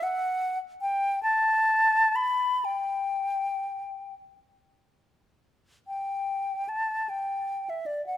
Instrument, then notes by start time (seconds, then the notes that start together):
flute
0.03 F#5
0.81 G5
1.23 A5
2.16 B5
2.65 G5
5.88 G5
6.69 A5
7.09 G5
7.70 E5
7.86 D5
8.07 F#5